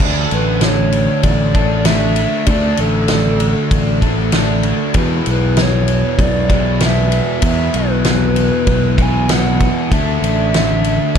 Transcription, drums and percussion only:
0.00 kick, crash
0.31 ride
0.61 snare, ride
0.92 ride
1.23 kick, ride
1.55 kick, ride
1.85 snare, ride
2.16 ride
2.46 kick, ride
2.77 ride
3.08 snare, ride
3.40 ride
3.71 kick, ride
4.02 kick, ride
4.32 snare, ride
4.63 ride
4.94 kick, ride
5.26 ride
5.57 snare, ride
5.88 ride
6.19 kick, ride
6.50 kick, ride
6.80 snare, ride
7.12 ride
7.42 kick, ride
7.74 ride
8.05 snare, ride
8.36 ride
8.67 kick, ride
8.98 kick, ride
9.29 snare, ride
9.60 kick, ride
9.92 kick, ride
10.24 ride
10.54 snare, ride
10.84 ride

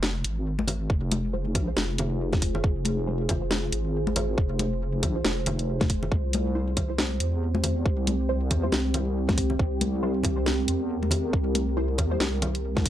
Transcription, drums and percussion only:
0.03 snare, high conga
0.24 closed hi-hat
0.59 high conga
0.68 open hi-hat, low conga
0.90 kick
1.12 closed hi-hat, high conga
1.55 kick, closed hi-hat, low conga
1.77 snare, high conga
1.98 closed hi-hat, low conga
2.33 kick, snare, high conga
2.42 kick, open hi-hat
2.55 low conga
2.64 kick
2.85 closed hi-hat, high conga
3.29 kick, closed hi-hat, low conga
3.51 snare, high conga
3.72 closed hi-hat
4.07 high conga
4.16 open hi-hat, low conga
4.38 kick
4.59 closed hi-hat, high conga
5.03 kick, closed hi-hat, low conga
5.25 snare, high conga
5.46 closed hi-hat, low conga
5.59 closed hi-hat
5.81 kick, snare, high conga
5.90 kick, open hi-hat
6.03 low conga
6.12 kick
6.33 closed hi-hat, high conga
6.77 kick, closed hi-hat, low conga
6.98 snare, high conga
7.20 closed hi-hat
7.55 high conga
7.63 open hi-hat, low conga
7.86 kick
8.07 closed hi-hat, high conga
8.51 kick, closed hi-hat, low conga
8.72 snare, high conga
8.94 closed hi-hat, low conga
9.29 kick, snare, high conga
9.38 kick, open hi-hat
9.50 low conga
9.59 kick
9.81 closed hi-hat, high conga
10.23 kick, closed hi-hat, low conga
10.46 snare, high conga
10.68 closed hi-hat
11.03 high conga
11.11 open hi-hat, low conga
11.33 kick
11.55 closed hi-hat, high conga
11.98 kick, closed hi-hat, low conga
12.20 snare, high conga
12.42 closed hi-hat, low conga
12.55 closed hi-hat
12.77 kick, snare, high conga
12.86 kick, open hi-hat

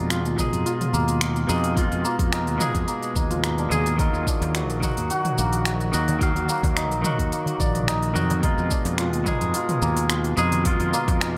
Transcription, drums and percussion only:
0.10 finger snap, open hi-hat, shaker
0.25 open hi-hat, shaker
0.38 kick, mid tom, shaker
0.53 open hi-hat, shaker
0.66 open hi-hat, shaker
0.81 mid tom, open hi-hat, shaker
0.94 shaker
1.08 open hi-hat, shaker
1.21 finger snap, open hi-hat, shaker
1.36 open hi-hat, shaker
1.49 shaker
1.64 open hi-hat, shaker
1.77 kick, open hi-hat, shaker
1.92 open hi-hat, shaker
2.05 shaker
2.19 kick, open hi-hat, shaker
2.33 finger snap, open hi-hat, shaker
2.47 open hi-hat, shaker
2.60 mid tom, shaker
2.75 kick, open hi-hat, shaker
2.88 open hi-hat, shaker
3.03 open hi-hat, shaker
3.15 kick, shaker
3.31 mid tom, open hi-hat, shaker
3.44 finger snap, open hi-hat, shaker
3.58 open hi-hat, shaker
3.71 mid tom, shaker
3.86 open hi-hat, shaker
3.99 kick, open hi-hat, darbuka ka, shaker
4.14 shaker
4.27 kick, darbuka tek, shaker
4.42 open hi-hat, darbuka ka, darbuka tek, shaker
4.55 finger snap, open hi-hat, darbuka tek, shaker
4.70 open hi-hat, shaker
4.82 kick, mid tom, shaker
4.97 open hi-hat, shaker
5.10 open hi-hat, shaker
5.25 mid tom, open hi-hat, darbuka tek, shaker
5.38 shaker
5.53 open hi-hat, shaker
5.65 finger snap, open hi-hat, shaker
5.80 open hi-hat, shaker
5.93 shaker
6.08 open hi-hat, darbuka dum, shaker
6.21 kick, open hi-hat, darbuka ka, shaker
6.35 open hi-hat, darbuka dum, shaker
6.48 darbuka tek, shaker
6.63 kick, open hi-hat, darbuka ka, darbuka tek, shaker
6.77 finger snap, open hi-hat, darbuka tek, shaker
6.91 open hi-hat, shaker
7.04 mid tom, shaker
7.19 kick, open hi-hat, shaker
7.32 open hi-hat, shaker
7.46 open hi-hat, darbuka dum, shaker
7.60 kick, shaker
7.75 mid tom, open hi-hat, shaker
7.88 finger snap, open hi-hat, shaker
8.03 open hi-hat, shaker
8.15 mid tom, darbuka ka, shaker
8.30 open hi-hat, darbuka tek, darbuka dum, shaker
8.43 kick, open hi-hat, darbuka ka, shaker
8.58 shaker
8.71 kick, darbuka tek, shaker
8.85 open hi-hat, darbuka ka, darbuka tek, shaker
8.98 finger snap, open hi-hat, darbuka tek, shaker
9.13 open hi-hat, shaker
9.26 kick, mid tom, shaker
9.41 open hi-hat, shaker
9.54 open hi-hat, shaker
9.69 mid tom, open hi-hat, darbuka tek, shaker
9.82 shaker
9.97 open hi-hat, shaker
10.10 finger snap, open hi-hat, shaker
10.24 open hi-hat, shaker
10.37 shaker
10.52 open hi-hat, darbuka dum, shaker
10.65 kick, open hi-hat, darbuka ka, shaker
10.80 open hi-hat, darbuka dum, shaker
10.94 darbuka tek, shaker
11.08 kick, open hi-hat, darbuka ka, darbuka tek, shaker
11.20 finger snap, open hi-hat, darbuka tek, shaker

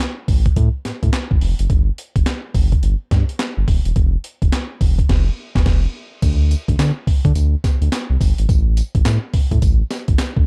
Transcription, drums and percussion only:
0.00 snare, clap, closed hi-hat
0.28 kick, open hi-hat
0.46 kick, closed hi-hat
0.56 kick, closed hi-hat
0.85 snare, closed hi-hat
1.03 kick, closed hi-hat
1.13 snare, clap, closed hi-hat
1.31 kick
1.41 open hi-hat
1.59 closed hi-hat
1.70 kick, closed hi-hat
1.98 closed hi-hat
2.16 kick, closed hi-hat
2.26 snare, clap, closed hi-hat
2.54 kick, open hi-hat
2.72 kick, closed hi-hat
2.83 closed hi-hat
3.11 kick, snare, closed hi-hat
3.29 closed hi-hat
3.39 snare, clap, closed hi-hat
3.68 kick, open hi-hat
3.85 closed hi-hat
3.96 kick, closed hi-hat
4.24 closed hi-hat
4.42 kick, closed hi-hat
4.52 snare, clap, closed hi-hat
4.81 kick, open hi-hat
4.99 kick, closed hi-hat
5.09 kick, snare, crash
5.55 kick, snare
5.66 kick, snare, crash
6.22 kick, closed hi-hat, crash, tambourine
6.51 closed hi-hat, tambourine
6.68 kick, closed hi-hat
6.79 snare, clap, closed hi-hat, tambourine
7.07 kick, open hi-hat
7.25 kick, closed hi-hat
7.35 closed hi-hat, tambourine
7.64 kick, snare, closed hi-hat, tambourine
7.82 closed hi-hat
7.92 snare, clap, closed hi-hat, tambourine
8.21 kick, open hi-hat, tambourine
8.38 closed hi-hat
8.49 kick, closed hi-hat, tambourine
8.77 closed hi-hat, tambourine
8.95 kick, closed hi-hat
9.05 snare, clap, closed hi-hat, tambourine
9.34 kick, open hi-hat
9.51 kick, closed hi-hat
9.62 kick, closed hi-hat, tambourine
9.90 snare, closed hi-hat, tambourine
10.08 kick, closed hi-hat
10.18 snare, clap, closed hi-hat, tambourine
10.37 kick

